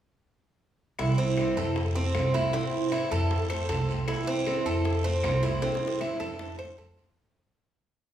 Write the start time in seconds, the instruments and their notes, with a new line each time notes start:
0.98 upright bass C2, nylon-string guitar C3 E3 G3 C4 E4, cuban tres E4, high bongo, long guiro, claves
1.18 cuban tres C4, high bongo
1.37 nylon-string guitar C3 E3 G3 C4 E4, high bongo, short guiro, claves
1.56 upright bass F2, nylon-string guitar G3 C4 E4, cuban tres A4, high bongo, short guiro
1.76 muted nylon-string guitar stroke, high bongo, long guiro
1.94 nylon-string guitar A3 C4 F4, cuban tres C4
2.14 upright bass C2, nylon-string guitar F3 A3 C4 F4, high bongo, low bongo, short guiro, claves
2.33 nylon-string guitar F3 A3 C4 F4, cuban tres E4, high bongo, short guiro
2.52 nylon-string guitar C3 E3 G3 C4 E4, cuban tres C4, high bongo, long guiro
2.73 high bongo
2.91 nylon-string guitar C3 E3 G3 C4 E4, cuban tres E4, high bongo, short guiro, claves
3.11 upright bass F2, nylon-string guitar G3 C4 E4, cuban tres A4, high bongo, short guiro
3.30 muted nylon-string guitar stroke, high bongo, long guiro
3.49 nylon-string guitar A3 C4 F4, cuban tres C5, high bongo, claves
3.69 upright bass C2, nylon-string guitar F3 A3 C4 F4, cuban tres A4, high bongo, low bongo, short guiro
3.88 nylon-string guitar F3 A3 C4 F4, short guiro
4.08 nylon-string guitar C3 E3 G3 C4 E4, cuban tres E4, high bongo, long guiro, claves
4.27 cuban tres C4, high bongo
4.46 nylon-string guitar C3 E3 G3 C4 E4, high bongo, short guiro, claves
4.65 upright bass F2, nylon-string guitar G3 C4 E4, cuban tres A4, high bongo, short guiro
4.84 muted nylon-string guitar stroke, high bongo, long guiro
5.04 nylon-string guitar A3 C4 F4, cuban tres C4
5.23 upright bass C2, nylon-string guitar F3 A3 C4 F4, high bongo, low bongo, short guiro, claves
5.42 nylon-string guitar F3 A3 C4 F4, cuban tres E4, high bongo, short guiro
5.61 nylon-string guitar C3 E3 G3 C4 E4, cuban tres C4, high bongo, long guiro
5.75 high bongo
5.88 high bongo
6.00 nylon-string guitar C3 E3 G3 C4 E4, cuban tres E4, low bongo, short guiro, claves
6.14 low bongo
6.19 upright bass F2, nylon-string guitar G3 C4 E4, cuban tres A4, short guiro
6.26 low bongo
6.39 muted nylon-string guitar stroke, low bongo, long guiro
6.58 nylon-string guitar A3 C4 F4, cuban tres C5, claves
6.65 low bongo
6.77 upright bass F2, nylon-string guitar F3 A3 C4 F4, cuban tres A4, low bongo, short guiro
6.96 nylon-string guitar F3 A3 C4 F4, short guiro
7.04 low bongo